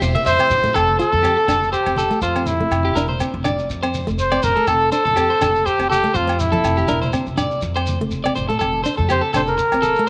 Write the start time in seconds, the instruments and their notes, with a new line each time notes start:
Already playing: nylon-string guitar C4, transistor combo organ C4 E4 G4
0.02 upright bass E1, clean electric guitar C5, shekere
0.15 nylon-string guitar A#3, clean electric guitar E5, high conga, shekere
0.26 upright bass F2, trumpet C5, clean electric guitar E5, low conga, shekere
0.39 nylon-string guitar C4, high conga, low agogo
0.50 upright bass G1, low conga, shekere
0.63 nylon-string guitar A3, low conga, shekere
0.74 upright bass F1, clean electric guitar A4, trumpet A4, low agogo, shekere
0.88 high conga
0.99 nylon-string guitar F4, trumpet A4, clean electric guitar C5, shekere
1.12 upright bass F2, clean electric guitar A4, high conga
1.23 nylon-string guitar C4, clean electric guitar G4, low agogo, shekere
1.37 clean electric guitar A4
1.48 upright bass F1, nylon-string guitar D4, clean electric guitar A4, high conga, low conga, low agogo, shekere
1.63 shekere
1.72 trumpet G4, clean electric guitar C5, shekere
1.86 upright bass F1, nylon-string guitar C4, low agogo, shekere
1.96 clean electric guitar A4, high conga, shekere
2.11 nylon-string guitar A3, shekere
2.22 upright bass F2, trumpet F4, clean electric guitar C5, shekere
2.36 nylon-string guitar C4, low agogo, shekere
2.46 trumpet E4, high conga, low conga, shekere
2.60 upright bass F1, nylon-string guitar A3
2.71 upright bass F1, low agogo, shekere
2.83 clean electric guitar G4, high conga
2.95 upright bass E1, nylon-string guitar D4, clean electric guitar A#4, shekere
3.08 clean electric guitar C5, high conga
3.20 nylon-string guitar C4, low agogo, shekere
3.34 upright bass F1
3.44 nylon-string guitar D4, clean electric guitar D5, high conga, low conga, low agogo, shekere
3.59 shekere
3.70 upright bass F2, shekere
3.83 nylon-string guitar C4, clean electric guitar C5, low agogo, shekere
3.94 high conga, shekere
4.07 upright bass F1, nylon-string guitar A3, shekere
4.19 trumpet C5, shekere
4.32 nylon-string guitar C4, clean electric guitar D5, low agogo, shekere
4.42 upright bass F1, trumpet A#4, clean electric guitar C5, high conga, low conga, shekere
4.56 nylon-string guitar A3, clean electric guitar A4
4.67 upright bass F1, clean electric guitar A4, trumpet A4, low agogo, shekere
4.92 nylon-string guitar D4, trumpet A4, clean electric guitar C5, shekere
5.05 upright bass F2, clean electric guitar A4, high conga
5.16 nylon-string guitar C4, clean electric guitar G4, low agogo, shekere
5.30 clean electric guitar C5
5.41 upright bass F1, nylon-string guitar D4, clean electric guitar A4, high conga, low conga, low agogo, shekere
5.55 shekere
5.66 trumpet G4, clean electric guitar C5, shekere
5.79 upright bass F1, nylon-string guitar C4, low agogo, shekere
5.90 trumpet G4, clean electric guitar A4, high conga, shekere
6.04 nylon-string guitar A3, shekere
6.14 upright bass F2, trumpet F4, clean electric guitar C5, shekere
6.27 nylon-string guitar C4, low agogo, shekere
6.39 trumpet E4, high conga, low conga, shekere
6.52 upright bass F1, nylon-string guitar F3, clean electric guitar A4
6.64 upright bass F1, low agogo, shekere
6.77 clean electric guitar G4, high conga, shekere
6.88 upright bass E1, nylon-string guitar D4, clean electric guitar A#4, low conga, shekere
7.02 clean electric guitar C5, high conga, shekere
7.13 nylon-string guitar C4, low agogo, shekere
7.26 upright bass F1, shekere
7.37 nylon-string guitar D4, clean electric guitar D5, high conga, low conga, low agogo, shekere
7.51 shekere
7.61 upright bass F2, shekere
7.75 nylon-string guitar C4, clean electric guitar C5, low agogo, shekere
7.86 high conga, shekere
8.01 upright bass F1, nylon-string guitar A3
8.11 high conga, shekere
8.24 nylon-string guitar C4, clean electric guitar D5, high conga, low agogo, shekere
8.36 upright bass F1, clean electric guitar C5, low conga, shekere
8.49 nylon-string guitar A3, clean electric guitar A4, low conga, shekere
8.59 upright bass F1, clean electric guitar A4, low agogo, shekere
8.73 high conga
8.84 nylon-string guitar D4, clean electric guitar C5, shekere
8.97 upright bass F2, clean electric guitar A4, high conga
9.09 nylon-string guitar C4, clean electric guitar G4, trumpet C5, low agogo, shekere
9.21 clean electric guitar A4
9.33 upright bass F1, nylon-string guitar D4, clean electric guitar A4, trumpet C5, high conga, low conga, low agogo, shekere
9.47 trumpet A#4, shekere
9.58 muted clean electric guitar stroke, shekere
9.72 upright bass F1, nylon-string guitar C4, low agogo, shekere
9.82 clean electric guitar A4, high conga, shekere
9.96 nylon-string guitar A3, shekere